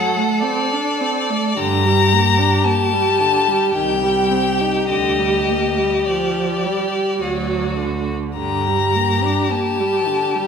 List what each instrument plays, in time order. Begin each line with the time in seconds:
Already playing: viola F#3, violin A4 F#5
0.16 viola A3
0.42 viola C4, violin D5
0.72 viola D4
1.01 viola C4
1.30 viola A3
1.57 cello G2, viola D3, violin G4 A#5
1.85 viola G3
2.13 viola A#3
2.39 viola D4
2.65 viola A#3, violin A5
2.93 viola G3
3.21 viola D3
3.48 viola G3
3.74 cello C2, viola D#3, violin G5
4.03 viola G3
4.31 viola C4
4.61 viola D#4
4.89 cello D2, viola D3, violin D#5
5.19 viola G3
5.50 viola A#3
5.78 viola G3
6.05 viola F3, violin D5
6.64 viola G3
7.21 cello D2, viola F#3, violin F#4
7.79 viola D3
8.37 cello G2, viola D3, violin G4 A#5
8.67 viola G3
8.95 viola A#3
9.24 viola D4
9.51 viola A#3, violin A5
9.80 viola G3
10.08 viola D3
10.35 viola G3